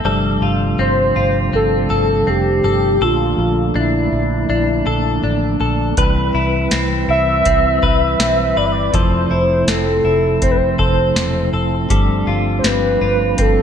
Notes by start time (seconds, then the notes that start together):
Already playing: C4 E4
0.05 G1 C3 F3 G3 A3 D4 A4
0.42 G1 F4
0.79 G1 C4 C5
1.16 G1 F4
1.53 G1 C4 A4
1.90 G1 A4
2.23 A4
2.27 F1 C4 G4
2.64 G1 A4
3.01 A#1 D3 A#3 D4 F4 A4
3.38 A#1
3.75 A#1 D4 E4
4.12 A#1
4.49 A#1 D4
4.86 A#1 A4
5.23 A1 D4
5.60 A#1 A4
5.97 C2 E3 G3 C4 E4 B4, kick, closed hi-hat
6.34 C2 E4
6.71 C2 C4, snare, closed hi-hat
7.08 C2 E4 E5
7.45 C2 C4, kick, closed hi-hat
7.83 C2 B4, kick
8.19 B1 C4, snare, closed hi-hat
8.57 G1 B4 D5
8.66 E5
8.72 D5
8.94 F1 C3 F3 A3 E4 A4 C5, kick, closed hi-hat
9.31 F1 E4
9.67 F1 C4 A4, snare, closed hi-hat
10.04 F1 E4
10.42 F1 C4 C5, kick, closed hi-hat
10.51 B4
10.57 C5
10.79 F1 A4 C5, kick
11.16 E1 C4, snare, closed hi-hat
11.53 F1 A4
11.90 G1 F3 G3 D4 A4, kick, closed hi-hat
12.27 G1 F4
12.59 C5
12.64 G1 C4 B4, snare, closed hi-hat
13.01 G1 F4
13.38 G1 C4 A4, kick, closed hi-hat